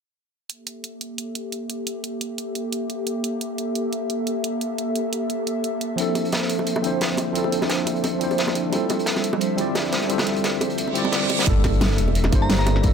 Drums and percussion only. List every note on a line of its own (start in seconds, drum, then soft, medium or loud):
0.50 closed hi-hat medium
0.67 closed hi-hat medium
0.84 closed hi-hat medium
1.01 closed hi-hat medium
1.18 closed hi-hat medium
1.35 closed hi-hat medium
1.52 closed hi-hat medium
1.70 closed hi-hat medium
1.87 closed hi-hat medium
2.04 closed hi-hat medium
2.21 closed hi-hat medium
2.38 closed hi-hat medium
2.55 closed hi-hat medium
2.73 closed hi-hat medium
2.90 closed hi-hat medium
3.07 closed hi-hat medium
3.24 closed hi-hat medium
3.41 closed hi-hat medium
3.58 closed hi-hat medium
3.75 closed hi-hat medium
3.93 closed hi-hat medium
4.10 closed hi-hat medium
4.27 closed hi-hat medium
4.44 closed hi-hat medium
4.61 closed hi-hat medium
4.78 closed hi-hat medium
4.96 closed hi-hat medium
5.13 closed hi-hat medium
5.30 closed hi-hat medium
5.47 closed hi-hat medium
5.64 closed hi-hat medium
5.81 closed hi-hat medium
5.98 closed hi-hat medium
6.15 closed hi-hat medium
6.15 high bongo soft
6.25 closed hi-hat soft
6.32 snare loud
6.32 closed hi-hat medium
6.32 high bongo medium
6.42 snare soft
6.50 closed hi-hat medium
6.59 high bongo soft
6.67 closed hi-hat medium
6.76 high bongo medium
6.84 closed hi-hat medium
7.01 snare loud
7.01 closed hi-hat medium
7.01 high bongo soft
7.11 snare soft
7.17 closed hi-hat medium
7.17 high bongo medium
7.35 closed hi-hat medium
7.44 high bongo soft
7.52 closed hi-hat medium
7.61 snare soft
7.61 high bongo medium
7.70 snare loud
7.70 closed hi-hat medium
7.86 closed hi-hat medium
7.86 high bongo medium
7.96 closed hi-hat soft
8.04 closed hi-hat medium
8.04 high bongo medium
8.21 closed hi-hat medium
8.31 closed hi-hat soft
8.31 high bongo soft
8.38 snare loud
8.38 closed hi-hat medium
8.47 snare medium
8.47 high bongo medium
8.55 closed hi-hat medium
8.73 closed hi-hat medium
8.73 high bongo soft
8.89 closed hi-hat medium
8.89 high bongo medium
8.99 closed hi-hat soft
9.06 snare loud
9.06 closed hi-hat medium
9.16 snare soft
9.16 high bongo soft
9.24 closed hi-hat medium
9.33 high bongo medium
9.41 closed hi-hat medium
9.58 closed hi-hat medium
9.58 high bongo soft
9.75 snare loud
9.75 closed hi-hat medium
9.75 high bongo medium
9.84 snare soft
9.92 snare loud
9.92 closed hi-hat medium
10.01 snare soft
10.01 high bongo soft
10.10 closed hi-hat medium
10.18 snare loud
10.18 closed hi-hat medium
10.18 high bongo medium
10.27 snare soft
10.27 closed hi-hat medium
10.36 closed hi-hat medium
10.44 snare loud
10.44 closed hi-hat medium
10.44 high bongo soft
10.61 closed hi-hat medium
10.61 high bongo medium
10.70 closed hi-hat soft
10.78 closed hi-hat medium
10.88 high bongo soft
10.95 closed hi-hat medium
10.95 closed hi-hat loud
11.05 high bongo medium
11.12 snare loud
11.12 closed hi-hat medium
11.22 snare soft
11.29 closed hi-hat medium
11.29 high bongo soft
11.39 snare loud
11.39 closed hi-hat medium
11.46 kick loud
11.46 closed hi-hat medium
11.64 kick medium
11.64 snare medium
11.64 closed hi-hat loud
11.64 closed hi-hat medium
11.64 high bongo medium
11.73 closed hi-hat soft
11.81 snare loud
11.81 closed hi-hat medium
11.81 high bongo medium
11.91 snare soft
11.98 closed hi-hat medium
11.98 closed hi-hat loud
12.08 high bongo soft
12.15 closed hi-hat medium
12.24 snare soft
12.24 high bongo medium
12.32 kick loud
12.32 closed hi-hat loud
12.32 closed hi-hat medium
12.50 snare loud
12.50 closed hi-hat medium
12.50 high bongo soft
12.59 snare soft
12.66 closed hi-hat medium
12.66 high bongo medium
12.76 snare soft
12.83 kick loud
12.83 closed hi-hat medium